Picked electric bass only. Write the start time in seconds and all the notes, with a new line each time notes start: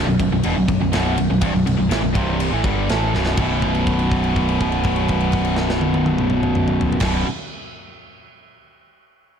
0.07 B0
0.19 B0
0.31 B0
0.45 E1
0.57 B0
0.68 B0
0.82 B0
0.94 B0
1.19 B0
1.30 B0
1.42 C1
1.54 B0
1.66 B0
1.79 B0
1.92 A1
2.03 B0
2.15 C1
2.53 A1
2.64 G1
2.90 A1
3.15 B0
3.38 B0
7.01 B0